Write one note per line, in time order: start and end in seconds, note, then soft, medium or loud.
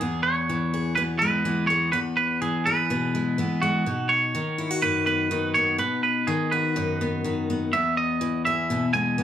0.00 1.92 E2 medium
0.00 0.97 B3 soft
0.00 0.23 G#4 medium
0.23 0.95 C#5 medium
0.49 1.44 E3 medium
0.74 1.91 G#4 medium
0.95 1.45 B2 medium
0.95 1.45 B3 medium
0.95 1.02 B4 medium
1.19 1.69 G#3 medium
1.19 1.67 B4 medium
1.45 1.90 E3 medium
1.45 1.93 B3 medium
1.67 1.91 G#3 medium
1.67 1.92 C#5 medium
1.92 3.86 E2 medium
1.92 2.90 B3 soft
1.92 1.99 B4 loud
2.17 2.39 B4 medium
2.42 3.37 E3 medium
2.42 2.66 G#4 medium
2.66 3.84 G#4 medium
2.66 3.65 B4 medium
2.90 3.38 B2 medium
2.90 3.39 B3 medium
3.15 3.61 G#3 medium
3.38 3.83 E3 medium
3.38 3.87 B3 medium
3.62 3.83 G#3 medium
3.62 4.12 F#4 medium
3.86 4.35 B2 medium
3.86 4.83 D#4 soft
4.09 4.78 C#5 medium
4.35 5.30 D#3 medium
4.58 4.71 E4 medium
4.71 5.79 F#4 medium
4.82 5.76 F#2 medium
4.82 5.30 D#4 medium
4.82 5.05 B4 medium
5.06 5.55 B3 soft
5.06 5.52 B4 medium
5.31 5.76 D#3 medium
5.31 5.77 D#4 soft
5.54 7.01 B3 medium
5.54 5.79 C#5 medium
5.78 6.27 B2 medium
5.78 6.75 D#4 soft
5.78 6.02 B4 medium
6.03 6.28 B4 medium
6.27 7.23 D#3 medium
6.27 6.52 G#4 medium
6.51 7.70 F#4 medium
6.51 7.44 B4 medium
6.76 7.70 F#2 medium
6.76 7.24 D#4 medium
7.01 7.50 B3 medium
7.24 7.70 D#3 soft
7.24 7.70 D#4 soft
7.50 7.74 B3 medium
7.73 9.23 E2 medium
7.73 8.70 B3 soft
7.73 7.97 E5 medium
7.97 8.42 D#5 medium
8.21 9.17 E3 medium
8.45 9.23 G#4 medium
8.45 8.93 E5 medium
8.70 9.18 B2 medium
8.70 9.18 B3 medium
8.93 9.23 G#3 soft
8.93 9.23 G#5 loud
9.18 9.23 E3 medium
9.18 9.23 B3 medium